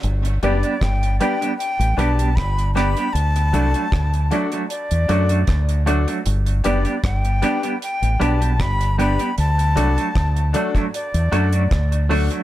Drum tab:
HH |xxxxxxxxxxxxxxxx|xxxxxxxxxxxxxxxx|xxxxxxxxxxxxxxxx|xxxxxxxxxxxxxxox|
SD |----r-------r-r-|----r-------r---|----r-------r---|----r-------r---|
BD |----o-------o---|----o-------o---|----o-------o---|----o--o----o---|